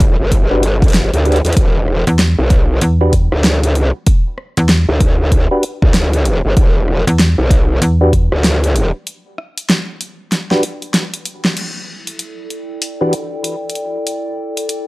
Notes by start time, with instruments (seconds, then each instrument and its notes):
Already playing: wobble bass E1
0.00 kick, closed hi-hat
0.20 wobble bass G1
0.32 kick, closed hi-hat
0.51 tonewheel organ D4 F#4 G4 B4
0.63 closed hi-hat
0.82 kick, closed hi-hat
0.84 closed hi-hat
0.88 closed hi-hat
0.90 closed hi-hat
0.92 snare, closed hi-hat
0.94 closed hi-hat
1.13 wobble bass D2, closed hi-hat
1.25 tonewheel organ D4 F#4 G4 B4, closed hi-hat
1.32 closed hi-hat
1.36 closed hi-hat
1.45 wobble bass E2, closed hi-hat
1.46 closed hi-hat
1.53 closed hi-hat
1.57 wobble bass E1, kick, closed hi-hat
1.88 cross-stick
1.98 cross-stick
2.07 fm bass E2, cross-stick, closed hi-hat
2.19 snare, closed hi-hat
2.38 wobble bass B1
2.50 kick, closed hi-hat
2.81 fm bass E2, closed hi-hat
3.01 tonewheel organ D4 F#4 G4 B4
3.13 kick, closed hi-hat
3.32 wobble bass D2, cross-stick
3.44 snare, closed hi-hat
3.64 closed hi-hat
3.74 wobble bass C#2, closed hi-hat
4.07 kick, closed hi-hat
4.38 cross-stick
4.57 fm bass E2, closed hi-hat
4.69 snare, closed hi-hat
4.89 wobble bass D2
5.00 kick, closed hi-hat
5.32 kick, closed hi-hat
5.51 tonewheel organ D4 F#4 G4 B4
5.63 closed hi-hat
5.82 wobble bass D2, kick
5.94 snare, closed hi-hat
6.13 closed hi-hat
6.25 closed hi-hat
6.45 wobble bass G1
6.57 wobble bass E1, kick, closed hi-hat
6.88 cross-stick
7.07 fm bass E2, closed hi-hat
7.19 snare, closed hi-hat
7.38 wobble bass B1
7.50 kick, closed hi-hat
7.82 fm bass E2, closed hi-hat
8.01 tonewheel organ D4 F#4 G4 B4
8.13 kick, closed hi-hat
8.32 wobble bass D2, cross-stick
8.44 snare, closed hi-hat
8.64 closed hi-hat
8.76 closed hi-hat
9.07 closed hi-hat
9.38 cross-stick
9.58 closed hi-hat
9.70 snare, closed hi-hat
10.01 closed hi-hat
10.32 snare, closed hi-hat
10.51 tonewheel organ D4 F#4 G4 B4, snare
10.63 closed hi-hat
10.82 closed hi-hat
10.94 snare, closed hi-hat
11.14 closed hi-hat
11.26 closed hi-hat
11.45 snare
11.57 ambient pad E4, closed hi-hat, crash
11.80 ambient pad A4
12.07 closed hi-hat
12.16 ambient pad D5, closed hi-hat
12.48 ambient pad G5, closed hi-hat
12.82 closed hi-hat
13.01 tonewheel organ E3 D4 F#4 G4 B4
13.13 closed hi-hat
13.44 closed hi-hat
13.70 closed hi-hat
13.75 closed hi-hat
14.07 closed hi-hat
14.57 closed hi-hat
14.69 closed hi-hat